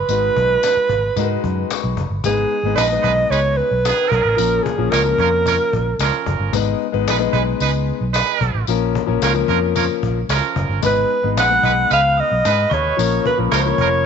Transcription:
Already playing: alto saxophone B4, glockenspiel B5
0.09 fingered electric bass G#1, grand piano G#3 D#4 F#4 B4, cajon slap, tambourine
0.36 fingered electric bass B1, cajon bass
0.50 cajon slap
0.63 cajon slap, tambourine
0.77 muted fingered electric bass stroke
0.89 fingered electric bass G#1, cajon bass
1.04 cajon slap
1.16 fingered electric bass G#2, grand piano G#3 D#4 F#4 A#4, cajon bass, tambourine
1.25 grand piano B4
1.44 fingered electric bass F#2, cajon bass
1.70 grand piano C#6, cajon slap, tambourine
1.84 fingered electric bass B1
1.97 fingered electric bass F#1, cajon bass
2.10 fingered electric bass G1, cajon slap
2.24 fingered electric bass G#1, grand piano G#3 B3 D#4 B4, alto saxophone G#4, cajon bass, tambourine
2.51 cajon slap
2.63 fingered electric bass G#1, grand piano G#3 B3 D#4 B4
2.75 fingered electric bass A#1, horn section G#3 D#4 B4, alto saxophone D#5, cajon slap, tambourine
2.91 grand piano G#3 B3 D#4 B4
3.01 fingered electric bass B1, horn section G#3 D#4 B4, cajon bass
3.18 cajon slap
3.30 fingered electric bass C#2, horn section G#3 D#4 B4, alto saxophone C#5, cajon slap, tambourine
3.57 alto saxophone B4, cajon slap
3.71 fingered electric bass B1
3.85 horn section D#3 B3 G#4, cajon slap, tambourine
4.11 fingered electric bass B1, alto saxophone A#4, cajon bass
4.25 fingered electric bass A1
4.37 fingered electric bass A#1, grand piano F3 A#3 C#4 A#4, cajon slap, tambourine
4.63 alto saxophone G#4, cajon bass
4.78 fingered electric bass A#1, grand piano F3 A#3 C#4 A#4
4.90 fingered electric bass C#2, horn section F3 C#4 A#4, alto saxophone A#4, cajon slap, tambourine
5.04 grand piano F3 A#3 C#4 A#4
5.18 fingered electric bass F2, horn section F3 C#4 A#4, cajon bass
5.33 cajon slap
5.46 horn section F3 C#4 A#4, cajon bass, tambourine
5.73 fingered electric bass A#1, cajon bass
5.99 fingered electric bass C#2, horn section F3 C#4 A#4, cajon slap, tambourine
6.26 fingered electric bass F#1, cajon bass
6.39 fingered electric bass G1
6.52 fingered electric bass G#1, grand piano G#3 B3 D#4 B4, cajon bass, tambourine
6.81 cajon slap
6.92 fingered electric bass G#1, grand piano G#3 B3 D#4 B4
7.07 fingered electric bass A#1, horn section G#3 D#4 B4, cajon slap, tambourine
7.19 grand piano G#3 B3 D#4 B4
7.33 fingered electric bass B1, horn section G#3 D#4 B4, cajon bass
7.48 cajon slap
7.60 fingered electric bass C#2, horn section G#3 D#4 B4, cajon slap, tambourine
7.88 cajon slap
8.01 fingered electric bass B1
8.13 horn section G#3 D#4 B4, cajon slap, tambourine
8.41 fingered electric bass B1, cajon bass
8.54 fingered electric bass A1
8.67 fingered electric bass A#1, grand piano F3 A#3 C#4 A#4, cajon slap, tambourine
8.95 cajon bass
9.06 fingered electric bass A#1, grand piano F3 A#3 C#4 A#4, cajon slap
9.22 fingered electric bass C#2, horn section F3 C#4 A#4, cajon slap, tambourine
9.33 grand piano F3 A#3 C#4 A#4, cajon slap
9.48 fingered electric bass F2, horn section F3 C#4 A#4, cajon bass
9.63 cajon slap
9.75 horn section F3 C#4 A#4, cajon bass, tambourine
10.03 fingered electric bass A#1, cajon bass
10.29 fingered electric bass C#2, horn section F3 C#4 A#4, cajon slap, tambourine
10.56 fingered electric bass F#1, cajon bass
10.69 fingered electric bass G1, cajon slap
10.82 fingered electric bass G#1, grand piano G#3 B3 D#4 B4, glockenspiel B5, cajon bass, tambourine
10.86 alto saxophone B4
11.10 cajon slap
11.23 fingered electric bass G#1, grand piano G#3 B3 D#4 B4
11.36 fingered electric bass A#1, horn section G#3 D#4 B4, alto saxophone F#5, glockenspiel F#6, cajon slap, tambourine
11.49 grand piano G#3 B3 D#4 B4
11.63 fingered electric bass B1, horn section G#3 D#4 B4, cajon bass
11.78 cajon slap
11.89 fingered electric bass C#2, horn section G#3 D#4 B4, alto saxophone F5, glockenspiel F6, cajon slap, tambourine
12.17 alto saxophone D#5, glockenspiel D#6, cajon slap
12.31 fingered electric bass B1
12.45 fingered electric bass G#2, horn section G#3 D#4 B4, cajon slap, tambourine
12.70 fingered electric bass D#2, alto saxophone C#5, glockenspiel C#6, cajon bass
12.97 fingered electric bass A#1, grand piano F3 A#3 C#4 A#4, tambourine
13.26 alto saxophone B4, glockenspiel B5, cajon bass
13.38 fingered electric bass A#1, grand piano F3 A#3 C#4 A#4
13.51 fingered electric bass C#2, horn section F3 C#4 A#4, glockenspiel C#6, cajon slap, tambourine
13.55 alto saxophone C#5
13.66 grand piano F3 A#3 C#4 A#4
13.78 fingered electric bass F1, horn section F3 C#4 A#4, cajon bass
13.93 cajon slap

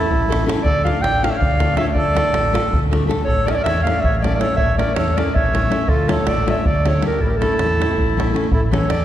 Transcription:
Already playing: accordion E4, clarinet A4
0.10 fingered electric bass A1, davul low
0.22 davul high
0.28 nylon-string guitar A3 C#4 E4 A4, davul high
0.46 nylon-string guitar A3 C#4 E4 A4, davul high
0.62 fingered electric bass D2, accordion A4, clarinet D5, davul low
0.84 nylon-string guitar A3 D4 F4 A4, accordion D5, clarinet F5, davul high
1.02 fingered electric bass A1, accordion D5, clarinet G5, davul high
1.14 davul high
1.22 nylon-string guitar A3 D4 F4 A4, clarinet F5, davul high
1.27 accordion C#5 D5, clarinet E5
1.37 accordion D5, clarinet F5
1.41 fingered electric bass D2, davul low
1.51 davul high
1.59 nylon-string guitar A3 D4 F4 A4, davul high
1.76 nylon-string guitar A3 D4 F4 A4, clarinet E5, davul high
1.80 accordion C#5
1.94 fingered electric bass D2, accordion A4, clarinet D5, davul low
2.14 nylon-string guitar A3 D4 F4 A4, davul high
2.25 davul high
2.34 fingered electric bass A1, davul high
2.45 davul high
2.53 nylon-string guitar A3 D4 F4 A4, davul high
2.73 fingered electric bass D2, davul low
2.83 davul high
2.91 nylon-string guitar A3 D4 F4 A4, davul high
3.03 davul high
3.07 nylon-string guitar A3 D4 F4 A4, davul high
3.19 davul high
3.25 fingered electric bass A1, accordion A4, clarinet C#5, davul low
3.46 nylon-string guitar A3 C#4 E4 A4, accordion A#4, clarinet D5, davul high
3.51 accordion C#5, clarinet E5
3.55 clarinet D5
3.59 accordion A#4
3.64 fingered electric bass E2, accordion C#5, clarinet E5, davul high
3.76 davul high
3.83 nylon-string guitar A3 C#4 E4 A4, accordion D5, clarinet F5, davul high
4.00 fingered electric bass A1, accordion C#5, clarinet E5, davul low
4.15 accordion C#5, clarinet E5, davul high
4.22 nylon-string guitar A3 C#4 E4 A4, accordion A#4, clarinet D5, davul high
4.34 accordion A#4, clarinet D5
4.39 nylon-string guitar A3 C#4 E4 A4, accordion A4, clarinet C#5, davul high
4.57 fingered electric bass A1, accordion C#5, clarinet E5, davul low
4.78 nylon-string guitar A3 C#4 E4 A4, accordion A#4, clarinet D5, davul high
4.94 fingered electric bass E2, accordion A4, clarinet C#5, davul high
5.08 davul high
5.16 nylon-string guitar A3 C#4 E4 A4, accordion A#4, clarinet D5, davul high
5.35 fingered electric bass A1, accordion C#5, clarinet E5, davul low
5.46 davul high
5.53 nylon-string guitar A3 C#4 E4 A4, davul high
5.70 nylon-string guitar A3 C#4 E4 A4, davul high
5.88 fingered electric bass D2, accordion F4, clarinet A4, davul low
6.08 nylon-string guitar A3 D4 F4 A4, accordion A4, clarinet C#5, davul high
6.27 fingered electric bass A1, accordion A4, clarinet D5, davul high
6.37 davul high
6.46 nylon-string guitar A3 D4 F4 A4, accordion C#5, davul high
6.50 clarinet E5
6.65 fingered electric bass D2, accordion A4, clarinet D5, davul low
6.76 davul high
6.85 nylon-string guitar A3 D4 F4 A4, accordion A4, clarinet C#5, davul high
7.02 nylon-string guitar A3 D4 F4 A4, accordion G4, davul high
7.07 clarinet A#4
7.20 fingered electric bass A1, accordion E4, clarinet A4, davul low
7.28 accordion G4, clarinet A#4, davul high
7.37 nylon-string guitar A3, accordion E4, clarinet A4
7.41 nylon-string guitar C#4 E4 A4, davul high
7.52 davul high
7.59 fingered electric bass E2, davul high
7.79 nylon-string guitar A3 C#4 E4 A4, davul high
7.91 davul high
7.98 fingered electric bass A1, davul low
8.10 davul high
8.17 nylon-string guitar A3 C#4 E4 A4, davul high
8.28 davul high
8.34 nylon-string guitar A3 C#4 E4 A4, davul high
8.44 davul high
8.51 fingered electric bass A1, accordion E4, clarinet A4, davul low
8.71 nylon-string guitar E3 A3 C#4 E4 A4, accordion A4, clarinet C#5, davul high
8.90 fingered electric bass E2, accordion A4, clarinet D5, davul high
9.00 davul high

